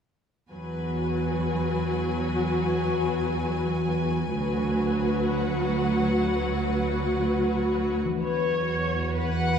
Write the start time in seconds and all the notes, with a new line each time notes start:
0.51 E2 F#3 F#4 B4 G#5
4.33 D2 F#3 F#4 B4
5.30 F#5
8.05 E3
8.09 F#3
8.13 F#4
8.18 B4
8.22 E2 F#4 B4 C#5
9.18 B4 F#5